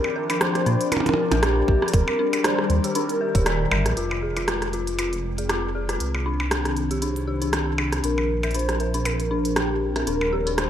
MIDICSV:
0, 0, Header, 1, 7, 480
1, 0, Start_track
1, 0, Tempo, 508475
1, 1827, Time_signature, 4, 2, 24, 8
1, 10099, End_track
2, 0, Start_track
2, 0, Title_t, "Soft synth lead"
2, 0, Program_c, 0, 80
2, 0, Note_on_c, 0, 70, 107
2, 353, Note_off_c, 0, 70, 0
2, 383, Note_on_c, 0, 72, 115
2, 831, Note_off_c, 0, 72, 0
2, 862, Note_on_c, 0, 70, 101
2, 1344, Note_on_c, 0, 67, 91
2, 1358, Note_off_c, 0, 70, 0
2, 1720, Note_off_c, 0, 67, 0
2, 1823, Note_on_c, 0, 70, 105
2, 2271, Note_off_c, 0, 70, 0
2, 2303, Note_on_c, 0, 72, 107
2, 2751, Note_off_c, 0, 72, 0
2, 2783, Note_on_c, 0, 70, 89
2, 3467, Note_off_c, 0, 70, 0
2, 7587, Note_on_c, 0, 70, 106
2, 8034, Note_off_c, 0, 70, 0
2, 8068, Note_on_c, 0, 72, 109
2, 8550, Note_on_c, 0, 70, 91
2, 8564, Note_off_c, 0, 72, 0
2, 8622, Note_on_c, 0, 72, 80
2, 8636, Note_off_c, 0, 70, 0
2, 8695, Note_on_c, 0, 70, 99
2, 8709, Note_off_c, 0, 72, 0
2, 9025, Note_off_c, 0, 70, 0
2, 9031, Note_on_c, 0, 67, 91
2, 9377, Note_off_c, 0, 67, 0
2, 9510, Note_on_c, 0, 70, 100
2, 9989, Note_on_c, 0, 72, 104
2, 10003, Note_off_c, 0, 70, 0
2, 10099, Note_off_c, 0, 72, 0
2, 10099, End_track
3, 0, Start_track
3, 0, Title_t, "Synth bell"
3, 0, Program_c, 1, 98
3, 148, Note_on_c, 1, 70, 75
3, 260, Note_off_c, 1, 70, 0
3, 281, Note_on_c, 1, 62, 99
3, 340, Note_off_c, 1, 62, 0
3, 627, Note_on_c, 1, 62, 105
3, 740, Note_off_c, 1, 62, 0
3, 866, Note_on_c, 1, 62, 78
3, 979, Note_off_c, 1, 62, 0
3, 1240, Note_on_c, 1, 70, 76
3, 1300, Note_off_c, 1, 70, 0
3, 1347, Note_on_c, 1, 62, 97
3, 1422, Note_off_c, 1, 62, 0
3, 1588, Note_on_c, 1, 70, 76
3, 1700, Note_off_c, 1, 70, 0
3, 1722, Note_on_c, 1, 62, 101
3, 1781, Note_off_c, 1, 62, 0
3, 2068, Note_on_c, 1, 62, 97
3, 2180, Note_off_c, 1, 62, 0
3, 2308, Note_on_c, 1, 62, 82
3, 2420, Note_off_c, 1, 62, 0
3, 2683, Note_on_c, 1, 67, 76
3, 2741, Note_off_c, 1, 67, 0
3, 2789, Note_on_c, 1, 62, 98
3, 2863, Note_off_c, 1, 62, 0
3, 3028, Note_on_c, 1, 70, 71
3, 3103, Note_off_c, 1, 70, 0
3, 3163, Note_on_c, 1, 67, 77
3, 3198, Note_off_c, 1, 67, 0
3, 3268, Note_on_c, 1, 74, 93
3, 3380, Note_off_c, 1, 74, 0
3, 3508, Note_on_c, 1, 70, 100
3, 3582, Note_off_c, 1, 70, 0
3, 3747, Note_on_c, 1, 65, 92
3, 3822, Note_off_c, 1, 65, 0
3, 3988, Note_on_c, 1, 68, 69
3, 4100, Note_off_c, 1, 68, 0
3, 4123, Note_on_c, 1, 65, 87
3, 4181, Note_off_c, 1, 65, 0
3, 4469, Note_on_c, 1, 65, 89
3, 4581, Note_off_c, 1, 65, 0
3, 4708, Note_on_c, 1, 65, 66
3, 4820, Note_off_c, 1, 65, 0
3, 5082, Note_on_c, 1, 68, 68
3, 5141, Note_off_c, 1, 68, 0
3, 5189, Note_on_c, 1, 65, 88
3, 5263, Note_off_c, 1, 65, 0
3, 5428, Note_on_c, 1, 68, 68
3, 5540, Note_off_c, 1, 68, 0
3, 5561, Note_on_c, 1, 65, 87
3, 5620, Note_off_c, 1, 65, 0
3, 5908, Note_on_c, 1, 62, 95
3, 6020, Note_off_c, 1, 62, 0
3, 6147, Note_on_c, 1, 62, 74
3, 6260, Note_off_c, 1, 62, 0
3, 6522, Note_on_c, 1, 67, 67
3, 6581, Note_off_c, 1, 67, 0
3, 6627, Note_on_c, 1, 62, 88
3, 6702, Note_off_c, 1, 62, 0
3, 6867, Note_on_c, 1, 67, 67
3, 6980, Note_off_c, 1, 67, 0
3, 7002, Note_on_c, 1, 62, 87
3, 7061, Note_off_c, 1, 62, 0
3, 7347, Note_on_c, 1, 62, 87
3, 7460, Note_off_c, 1, 62, 0
3, 7587, Note_on_c, 1, 62, 74
3, 7700, Note_off_c, 1, 62, 0
3, 7963, Note_on_c, 1, 70, 68
3, 8021, Note_off_c, 1, 70, 0
3, 8068, Note_on_c, 1, 62, 89
3, 8143, Note_off_c, 1, 62, 0
3, 8308, Note_on_c, 1, 70, 70
3, 8420, Note_off_c, 1, 70, 0
3, 8442, Note_on_c, 1, 62, 90
3, 8501, Note_off_c, 1, 62, 0
3, 8787, Note_on_c, 1, 62, 90
3, 8900, Note_off_c, 1, 62, 0
3, 9027, Note_on_c, 1, 62, 72
3, 9140, Note_off_c, 1, 62, 0
3, 9401, Note_on_c, 1, 70, 69
3, 9460, Note_off_c, 1, 70, 0
3, 9508, Note_on_c, 1, 62, 96
3, 9582, Note_off_c, 1, 62, 0
3, 9747, Note_on_c, 1, 67, 73
3, 9860, Note_off_c, 1, 67, 0
3, 9881, Note_on_c, 1, 62, 91
3, 9940, Note_off_c, 1, 62, 0
3, 10099, End_track
4, 0, Start_track
4, 0, Title_t, "Analog synth pad"
4, 0, Program_c, 2, 89
4, 0, Note_on_c, 2, 53, 86
4, 0, Note_on_c, 2, 60, 88
4, 0, Note_on_c, 2, 62, 88
4, 0, Note_on_c, 2, 74, 82
4, 0, Note_on_c, 2, 79, 72
4, 680, Note_off_c, 2, 79, 0
4, 782, Note_on_c, 2, 70, 85
4, 1825, Note_off_c, 2, 53, 0
4, 1827, Note_off_c, 2, 62, 0
4, 1827, Note_on_c, 2, 55, 83
4, 2151, Note_on_c, 2, 51, 78
4, 2599, Note_off_c, 2, 60, 0
4, 3747, Note_off_c, 2, 55, 0
4, 3747, Note_on_c, 2, 56, 72
4, 3946, Note_on_c, 2, 60, 74
4, 4220, Note_on_c, 2, 79, 71
4, 4343, Note_on_c, 2, 65, 67
4, 4508, Note_off_c, 2, 70, 0
4, 4520, Note_off_c, 2, 51, 0
4, 4520, Note_off_c, 2, 74, 0
4, 4584, Note_on_c, 2, 72, 67
4, 5667, Note_off_c, 2, 56, 0
4, 5667, Note_on_c, 2, 51, 77
4, 5770, Note_on_c, 2, 62, 78
4, 6440, Note_off_c, 2, 65, 0
4, 7586, Note_on_c, 2, 53, 88
4, 7587, Note_off_c, 2, 51, 0
4, 8020, Note_on_c, 2, 70, 80
4, 8361, Note_off_c, 2, 79, 0
4, 9506, Note_on_c, 2, 55, 90
4, 9507, Note_off_c, 2, 53, 0
4, 9507, Note_off_c, 2, 62, 0
4, 9726, Note_on_c, 2, 74, 75
4, 9973, Note_on_c, 2, 51, 86
4, 10099, Note_off_c, 2, 51, 0
4, 10099, Note_off_c, 2, 55, 0
4, 10099, Note_off_c, 2, 60, 0
4, 10099, Note_off_c, 2, 70, 0
4, 10099, Note_off_c, 2, 72, 0
4, 10099, Note_off_c, 2, 74, 0
4, 10099, End_track
5, 0, Start_track
5, 0, Title_t, "Detuned saw bass"
5, 0, Program_c, 3, 39
5, 625, Note_on_c, 3, 46, 82
5, 722, Note_off_c, 3, 46, 0
5, 1240, Note_on_c, 3, 34, 87
5, 1538, Note_off_c, 3, 34, 0
5, 1587, Note_on_c, 3, 34, 100
5, 1682, Note_off_c, 3, 34, 0
5, 1826, Note_on_c, 3, 27, 96
5, 1922, Note_off_c, 3, 27, 0
5, 2546, Note_on_c, 3, 39, 83
5, 2642, Note_off_c, 3, 39, 0
5, 3161, Note_on_c, 3, 27, 86
5, 3458, Note_off_c, 3, 27, 0
5, 3507, Note_on_c, 3, 31, 94
5, 3641, Note_on_c, 3, 34, 94
5, 3656, Note_off_c, 3, 31, 0
5, 3717, Note_off_c, 3, 34, 0
5, 3747, Note_on_c, 3, 29, 83
5, 5646, Note_off_c, 3, 29, 0
5, 5667, Note_on_c, 3, 36, 81
5, 7566, Note_off_c, 3, 36, 0
5, 7586, Note_on_c, 3, 34, 84
5, 9485, Note_off_c, 3, 34, 0
5, 9506, Note_on_c, 3, 27, 85
5, 10099, Note_off_c, 3, 27, 0
5, 10099, End_track
6, 0, Start_track
6, 0, Title_t, "Percussion blips"
6, 40, Note_on_c, 9, 76, 54
6, 135, Note_off_c, 9, 76, 0
6, 281, Note_on_c, 9, 76, 55
6, 375, Note_off_c, 9, 76, 0
6, 867, Note_on_c, 9, 64, 40
6, 867, Note_on_c, 9, 76, 64
6, 912, Note_off_c, 9, 64, 0
6, 912, Note_on_c, 9, 64, 47
6, 948, Note_off_c, 9, 64, 0
6, 948, Note_on_c, 9, 64, 55
6, 962, Note_off_c, 9, 76, 0
6, 1002, Note_off_c, 9, 64, 0
6, 1002, Note_on_c, 9, 64, 60
6, 1027, Note_off_c, 9, 64, 0
6, 1027, Note_on_c, 9, 64, 64
6, 1072, Note_off_c, 9, 64, 0
6, 1072, Note_on_c, 9, 64, 73
6, 1166, Note_off_c, 9, 64, 0
6, 1241, Note_on_c, 9, 64, 93
6, 1335, Note_off_c, 9, 64, 0
6, 1961, Note_on_c, 9, 76, 54
6, 2055, Note_off_c, 9, 76, 0
6, 2201, Note_on_c, 9, 76, 55
6, 2295, Note_off_c, 9, 76, 0
6, 3507, Note_on_c, 9, 76, 83
6, 3601, Note_off_c, 9, 76, 0
6, 3882, Note_on_c, 9, 76, 49
6, 3976, Note_off_c, 9, 76, 0
6, 4121, Note_on_c, 9, 76, 50
6, 4216, Note_off_c, 9, 76, 0
6, 4707, Note_on_c, 9, 76, 59
6, 4801, Note_off_c, 9, 76, 0
6, 5801, Note_on_c, 9, 76, 48
6, 5896, Note_off_c, 9, 76, 0
6, 6041, Note_on_c, 9, 76, 47
6, 6136, Note_off_c, 9, 76, 0
6, 7346, Note_on_c, 9, 76, 72
6, 7441, Note_off_c, 9, 76, 0
6, 7721, Note_on_c, 9, 76, 47
6, 7815, Note_off_c, 9, 76, 0
6, 7961, Note_on_c, 9, 76, 46
6, 8056, Note_off_c, 9, 76, 0
6, 8547, Note_on_c, 9, 76, 56
6, 8642, Note_off_c, 9, 76, 0
6, 9641, Note_on_c, 9, 76, 45
6, 9736, Note_off_c, 9, 76, 0
6, 10099, End_track
7, 0, Start_track
7, 0, Title_t, "Drums"
7, 281, Note_on_c, 9, 42, 50
7, 375, Note_off_c, 9, 42, 0
7, 386, Note_on_c, 9, 37, 109
7, 386, Note_on_c, 9, 42, 63
7, 480, Note_off_c, 9, 37, 0
7, 480, Note_off_c, 9, 42, 0
7, 521, Note_on_c, 9, 37, 57
7, 521, Note_on_c, 9, 42, 35
7, 615, Note_off_c, 9, 37, 0
7, 615, Note_off_c, 9, 42, 0
7, 626, Note_on_c, 9, 42, 35
7, 721, Note_off_c, 9, 42, 0
7, 761, Note_on_c, 9, 42, 50
7, 856, Note_off_c, 9, 42, 0
7, 867, Note_on_c, 9, 42, 65
7, 962, Note_off_c, 9, 42, 0
7, 1002, Note_on_c, 9, 42, 34
7, 1096, Note_off_c, 9, 42, 0
7, 1241, Note_on_c, 9, 42, 49
7, 1335, Note_off_c, 9, 42, 0
7, 1347, Note_on_c, 9, 37, 108
7, 1347, Note_on_c, 9, 42, 60
7, 1442, Note_off_c, 9, 37, 0
7, 1442, Note_off_c, 9, 42, 0
7, 1587, Note_on_c, 9, 36, 94
7, 1681, Note_off_c, 9, 36, 0
7, 1721, Note_on_c, 9, 37, 57
7, 1775, Note_on_c, 9, 42, 52
7, 1815, Note_off_c, 9, 37, 0
7, 1827, Note_off_c, 9, 42, 0
7, 1827, Note_on_c, 9, 36, 118
7, 1827, Note_on_c, 9, 42, 65
7, 1921, Note_off_c, 9, 36, 0
7, 1921, Note_off_c, 9, 42, 0
7, 2201, Note_on_c, 9, 42, 53
7, 2295, Note_off_c, 9, 42, 0
7, 2307, Note_on_c, 9, 37, 112
7, 2307, Note_on_c, 9, 42, 65
7, 2401, Note_off_c, 9, 37, 0
7, 2401, Note_off_c, 9, 42, 0
7, 2441, Note_on_c, 9, 37, 57
7, 2535, Note_off_c, 9, 37, 0
7, 2547, Note_on_c, 9, 42, 38
7, 2642, Note_off_c, 9, 42, 0
7, 2682, Note_on_c, 9, 42, 53
7, 2777, Note_off_c, 9, 42, 0
7, 2787, Note_on_c, 9, 42, 69
7, 2881, Note_off_c, 9, 42, 0
7, 2921, Note_on_c, 9, 42, 36
7, 3015, Note_off_c, 9, 42, 0
7, 3161, Note_on_c, 9, 36, 80
7, 3161, Note_on_c, 9, 42, 53
7, 3256, Note_off_c, 9, 36, 0
7, 3256, Note_off_c, 9, 42, 0
7, 3267, Note_on_c, 9, 37, 107
7, 3267, Note_on_c, 9, 42, 66
7, 3361, Note_off_c, 9, 37, 0
7, 3361, Note_off_c, 9, 42, 0
7, 3641, Note_on_c, 9, 37, 57
7, 3641, Note_on_c, 9, 42, 53
7, 3736, Note_off_c, 9, 37, 0
7, 3736, Note_off_c, 9, 42, 0
7, 3747, Note_on_c, 9, 42, 62
7, 3842, Note_off_c, 9, 42, 0
7, 4121, Note_on_c, 9, 42, 48
7, 4216, Note_off_c, 9, 42, 0
7, 4227, Note_on_c, 9, 37, 102
7, 4227, Note_on_c, 9, 42, 59
7, 4321, Note_off_c, 9, 37, 0
7, 4321, Note_off_c, 9, 42, 0
7, 4361, Note_on_c, 9, 37, 52
7, 4361, Note_on_c, 9, 42, 35
7, 4456, Note_off_c, 9, 37, 0
7, 4456, Note_off_c, 9, 42, 0
7, 4467, Note_on_c, 9, 42, 35
7, 4561, Note_off_c, 9, 42, 0
7, 4601, Note_on_c, 9, 42, 49
7, 4695, Note_off_c, 9, 42, 0
7, 4707, Note_on_c, 9, 42, 65
7, 4801, Note_off_c, 9, 42, 0
7, 4841, Note_on_c, 9, 42, 34
7, 4935, Note_off_c, 9, 42, 0
7, 5081, Note_on_c, 9, 42, 47
7, 5175, Note_off_c, 9, 42, 0
7, 5187, Note_on_c, 9, 37, 98
7, 5187, Note_on_c, 9, 42, 60
7, 5281, Note_off_c, 9, 37, 0
7, 5281, Note_off_c, 9, 42, 0
7, 5560, Note_on_c, 9, 37, 54
7, 5560, Note_on_c, 9, 42, 50
7, 5655, Note_off_c, 9, 37, 0
7, 5655, Note_off_c, 9, 42, 0
7, 5667, Note_on_c, 9, 42, 60
7, 5761, Note_off_c, 9, 42, 0
7, 6147, Note_on_c, 9, 37, 110
7, 6147, Note_on_c, 9, 42, 60
7, 6242, Note_off_c, 9, 37, 0
7, 6242, Note_off_c, 9, 42, 0
7, 6281, Note_on_c, 9, 37, 56
7, 6281, Note_on_c, 9, 42, 35
7, 6375, Note_off_c, 9, 37, 0
7, 6375, Note_off_c, 9, 42, 0
7, 6386, Note_on_c, 9, 42, 34
7, 6481, Note_off_c, 9, 42, 0
7, 6521, Note_on_c, 9, 42, 50
7, 6616, Note_off_c, 9, 42, 0
7, 6627, Note_on_c, 9, 42, 65
7, 6721, Note_off_c, 9, 42, 0
7, 6761, Note_on_c, 9, 42, 34
7, 6855, Note_off_c, 9, 42, 0
7, 7001, Note_on_c, 9, 42, 48
7, 7095, Note_off_c, 9, 42, 0
7, 7107, Note_on_c, 9, 37, 105
7, 7107, Note_on_c, 9, 42, 60
7, 7201, Note_off_c, 9, 37, 0
7, 7201, Note_off_c, 9, 42, 0
7, 7481, Note_on_c, 9, 37, 58
7, 7481, Note_on_c, 9, 42, 50
7, 7576, Note_off_c, 9, 37, 0
7, 7576, Note_off_c, 9, 42, 0
7, 7587, Note_on_c, 9, 42, 61
7, 7682, Note_off_c, 9, 42, 0
7, 7961, Note_on_c, 9, 42, 23
7, 8031, Note_off_c, 9, 42, 0
7, 8031, Note_on_c, 9, 42, 31
7, 8067, Note_off_c, 9, 42, 0
7, 8067, Note_on_c, 9, 42, 62
7, 8112, Note_off_c, 9, 42, 0
7, 8112, Note_on_c, 9, 42, 39
7, 8201, Note_off_c, 9, 42, 0
7, 8201, Note_on_c, 9, 37, 59
7, 8201, Note_on_c, 9, 42, 34
7, 8295, Note_off_c, 9, 37, 0
7, 8295, Note_off_c, 9, 42, 0
7, 8307, Note_on_c, 9, 42, 33
7, 8401, Note_off_c, 9, 42, 0
7, 8441, Note_on_c, 9, 42, 51
7, 8536, Note_off_c, 9, 42, 0
7, 8547, Note_on_c, 9, 42, 64
7, 8642, Note_off_c, 9, 42, 0
7, 8682, Note_on_c, 9, 42, 34
7, 8776, Note_off_c, 9, 42, 0
7, 8921, Note_on_c, 9, 42, 49
7, 9016, Note_off_c, 9, 42, 0
7, 9027, Note_on_c, 9, 37, 110
7, 9027, Note_on_c, 9, 42, 60
7, 9121, Note_off_c, 9, 37, 0
7, 9121, Note_off_c, 9, 42, 0
7, 9401, Note_on_c, 9, 37, 60
7, 9401, Note_on_c, 9, 42, 49
7, 9495, Note_off_c, 9, 37, 0
7, 9495, Note_off_c, 9, 42, 0
7, 9507, Note_on_c, 9, 42, 61
7, 9601, Note_off_c, 9, 42, 0
7, 9882, Note_on_c, 9, 42, 48
7, 9976, Note_off_c, 9, 42, 0
7, 9986, Note_on_c, 9, 37, 106
7, 9986, Note_on_c, 9, 42, 60
7, 10081, Note_off_c, 9, 37, 0
7, 10081, Note_off_c, 9, 42, 0
7, 10099, End_track
0, 0, End_of_file